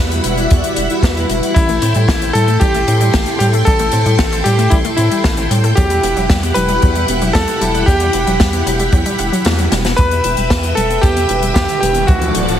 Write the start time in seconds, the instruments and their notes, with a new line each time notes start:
Already playing: analog polysynth G3 E4 F#4 B4, string machine G3 E4 F#5 B5
0.00 analog synth bass E2
0.11 closed hi-hat
0.24 analog synth bass E1, closed hi-hat
0.37 analog polysynth G3 E4 F#4 D5, closed hi-hat
0.50 analog synth bass E2, kick, closed hi-hat
0.64 closed hi-hat
0.76 analog synth bass E1, closed hi-hat
0.90 analog polysynth G3 E4 F#4 B4, closed hi-hat
1.03 analog synth bass E2, kick, snare, closed hi-hat
1.17 closed hi-hat
1.29 analog synth bass E1, closed hi-hat
1.43 closed hi-hat
1.54 analog synth bass A1, synth arpeggio sound G3, electric grand piano E4, string machine A4 G5 C6, kick, closed hi-hat
1.69 synth arpeggio sound A3, closed hi-hat
1.82 analog synth bass A2, synth arpeggio sound C4, closed hi-hat
1.94 analog synth bass A2, synth arpeggio sound G3, closed hi-hat
2.08 analog synth bass A1, synth arpeggio sound A3, kick, snare, closed hi-hat
2.22 synth arpeggio sound C4, closed hi-hat
2.33 analog synth bass A2, synth arpeggio sound G3, electric grand piano A4, closed hi-hat
2.48 synth arpeggio sound A3, closed hi-hat
2.60 analog synth bass A1, synth arpeggio sound G3, electric grand piano G4, kick, closed hi-hat
2.74 synth arpeggio sound A3, closed hi-hat
2.88 analog synth bass A2, synth arpeggio sound C4, closed hi-hat
3.01 synth arpeggio sound G3, closed hi-hat
3.13 analog synth bass A1, synth arpeggio sound A3, kick, snare, closed hi-hat
3.26 synth arpeggio sound C4, closed hi-hat
3.39 analog synth bass A2, synth arpeggio sound G3, electric grand piano G4, closed hi-hat
3.53 synth arpeggio sound A3, closed hi-hat
3.65 analog synth bass A1, synth arpeggio sound G3, electric grand piano A4, kick, closed hi-hat
3.79 synth arpeggio sound A3, closed hi-hat
3.92 analog synth bass A2, synth arpeggio sound C4, closed hi-hat
4.06 analog synth bass A2, synth arpeggio sound G3, closed hi-hat
4.19 analog synth bass A1, synth arpeggio sound A3, kick, snare, closed hi-hat
4.32 synth arpeggio sound C4, closed hi-hat
4.44 analog synth bass A2, synth arpeggio sound G3, electric grand piano G4, closed hi-hat
4.58 synth arpeggio sound A3, closed hi-hat
4.70 analog synth bass A1, synth arpeggio sound G3, electric grand piano E4, kick, closed hi-hat
4.85 synth arpeggio sound A3, closed hi-hat
4.97 analog synth bass A2, synth arpeggio sound C4, electric grand piano E4, closed hi-hat
5.11 synth arpeggio sound G3, closed hi-hat
5.24 analog synth bass A1, synth arpeggio sound A3, kick, snare, closed hi-hat
5.37 synth arpeggio sound C4, closed hi-hat
5.51 analog synth bass A2, synth arpeggio sound G3, closed hi-hat
5.64 synth arpeggio sound A3, closed hi-hat
5.75 analog synth bass E2, synth arpeggio sound F#3, string machine E4 G4 F#5 B5, electric grand piano G4, kick, closed hi-hat
5.90 synth arpeggio sound G3, closed hi-hat
6.03 analog synth bass E1, synth arpeggio sound B3, closed hi-hat
6.16 analog synth bass E1, synth arpeggio sound F#3, closed hi-hat
6.30 analog synth bass E2, synth arpeggio sound G3, kick, snare, closed hi-hat
6.43 synth arpeggio sound B3, closed hi-hat
6.54 analog synth bass E1, synth arpeggio sound F#3, electric grand piano B4, closed hi-hat
6.68 synth arpeggio sound G3, closed hi-hat
6.82 analog synth bass E2, synth arpeggio sound F#3, kick, closed hi-hat
6.95 synth arpeggio sound G3, closed hi-hat
7.08 analog synth bass E1, synth arpeggio sound B3, closed hi-hat
7.22 synth arpeggio sound F#3, closed hi-hat
7.33 analog synth bass E2, synth arpeggio sound G3, electric grand piano A4, kick, snare, closed hi-hat
7.48 synth arpeggio sound B3, closed hi-hat
7.61 analog synth bass E1, synth arpeggio sound F#3, closed hi-hat
7.74 synth arpeggio sound G3, closed hi-hat
7.86 analog synth bass E2, synth arpeggio sound F#3, electric grand piano G4, kick, closed hi-hat
8.00 synth arpeggio sound G3, closed hi-hat
8.13 analog synth bass E1, synth arpeggio sound B3, closed hi-hat
8.27 analog synth bass E1, synth arpeggio sound F#3, closed hi-hat
8.40 analog synth bass E2, synth arpeggio sound G3, kick, snare, closed hi-hat
8.53 synth arpeggio sound B3, closed hi-hat
8.66 analog synth bass E1, synth arpeggio sound F#3, closed hi-hat
8.79 synth arpeggio sound G3, closed hi-hat
8.92 analog synth bass E2, synth arpeggio sound F#3, kick, closed hi-hat
9.06 synth arpeggio sound G3, closed hi-hat
9.19 analog synth bass E1, synth arpeggio sound E4, closed hi-hat
9.32 synth arpeggio sound F#3, closed hi-hat
9.45 analog synth bass E2, synth arpeggio sound E4, snare, closed hi-hat
9.58 synth arpeggio sound F#3, closed hi-hat
9.72 analog synth bass E1, synth arpeggio sound G3, snare, closed hi-hat
9.85 synth arpeggio sound B3, snare, closed hi-hat
9.96 analog synth bass E2, synth arpeggio sound G3, electric grand piano B4, string machine B4 E5 G5 E6, kick, closed hi-hat, riser
10.11 synth arpeggio sound B3, closed hi-hat
10.24 analog synth bass E1, synth arpeggio sound E4, closed hi-hat
10.37 analog synth bass E1, synth arpeggio sound G3, closed hi-hat
10.50 analog synth bass E2, synth arpeggio sound B3, kick, snare, closed hi-hat
10.63 synth arpeggio sound E4, closed hi-hat
10.75 analog synth bass E1, synth arpeggio sound G3, electric grand piano A4, closed hi-hat
10.90 synth arpeggio sound B3, closed hi-hat
11.01 analog synth bass E2, synth arpeggio sound G3, electric grand piano G4, kick, closed hi-hat
11.16 synth arpeggio sound B3, closed hi-hat
11.29 analog synth bass E1, synth arpeggio sound E4, closed hi-hat
11.43 synth arpeggio sound G3, closed hi-hat
11.54 analog synth bass E2, synth arpeggio sound B3, electric grand piano G4, kick, snare, closed hi-hat
11.69 synth arpeggio sound E4, closed hi-hat
11.80 analog synth bass E1, synth arpeggio sound G3, analog polysynth B3 E4, electric grand piano G4, closed hi-hat
11.94 synth arpeggio sound B3, closed hi-hat
12.07 analog synth bass D2, synth arpeggio sound F#3, electric grand piano F#4, string machine A4 D5 F#5 D6, kick, closed hi-hat
12.22 synth arpeggio sound A3, closed hi-hat
12.35 analog synth bass D1, synth arpeggio sound D4, closed hi-hat
12.48 analog synth bass D1, synth arpeggio sound F#3, closed hi-hat